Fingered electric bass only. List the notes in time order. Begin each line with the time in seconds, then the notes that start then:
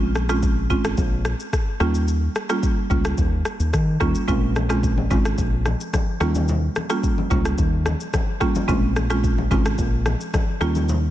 Already playing: A#1
0.70 G#1
0.98 A#1
1.80 D#2
2.90 C#2
3.18 D#2
3.60 D#2
3.73 D#3
4.01 D#2
4.28 A#1
5.11 G#1
5.38 A#1
6.21 D#2
7.31 C#2
7.58 D#2
8.68 A#1
9.51 G#1
9.79 A#1
10.61 D#2